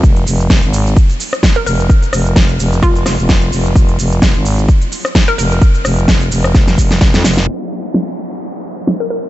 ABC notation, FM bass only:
X:1
M:4/4
L:1/16
Q:"Swing 16ths" 1/4=129
K:Fm
V:1 name="FM bass" clef=bass
F,,,2 F,,,2 F,,, A,,,3 z6 F,,,2 | z2 F,,,4 F,,,2 F,,,2 F,,, F,,,3 F,,,2 | F,,,2 F,,,2 F,,, A,,,3 z6 F,,,2 | z2 F,,,4 F,,,2 F,,,2 F,,,2 F,,, F,, F,,,2 |
z16 |]